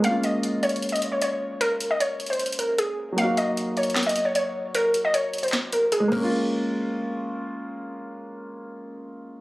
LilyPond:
<<
  \new Staff \with { instrumentName = "Synth pluck" } { \time 4/4 \key bes \minor \tempo 4 = 153 f''8 ees''4 des''8. ees''8 des''16 des''4 | bes'8. ees''16 des''8. c''8. bes'8 aes'8 r8 | f''8 ees''4 des''8. ees''8 des''16 des''4 | bes'8. ees''16 des''8. c''8. bes'8 aes'8 bes'8~ |
bes'2. r4 | r1 | }
  \new Staff \with { instrumentName = "Grand piano" } { \time 4/4 \key bes \minor <aes bes des' f'>1~ | <aes bes des' f'>1 | <ges bes ees' ges'>1~ | <ges bes ees' ges'>2.~ <ges bes ees' ges'>8 <aes bes des' f'>8~ |
<aes bes des' f'>1~ | <aes bes des' f'>1 | }
  \new DrumStaff \with { instrumentName = "Drums" } \drummode { \time 4/4 hh8 hh8 \tuplet 3/2 { hh16 r16 r16 hh16 hh16 hh16 hh16 hh16 hh16 hh16 r16 r16 } hh4 | hh8 hh8 \tuplet 3/2 { hh16 r16 r16 hh16 hh16 hh16 hh16 hh16 hh16 hh16 r16 r16 } hh4 | hh8 hh8 \tuplet 3/2 { hh16 r16 r16 hh16 hh16 hh16 <hc hh sn>16 hh16 hh16 hh16 r16 r16 } hh4 | hh8 hh8 hh8 hh32 hh32 hh32 hh32 <hc hh sn>8 hh8 hh8 <cymc bd>8 |
r4 r4 r4 r4 | r4 r4 r4 r4 | }
>>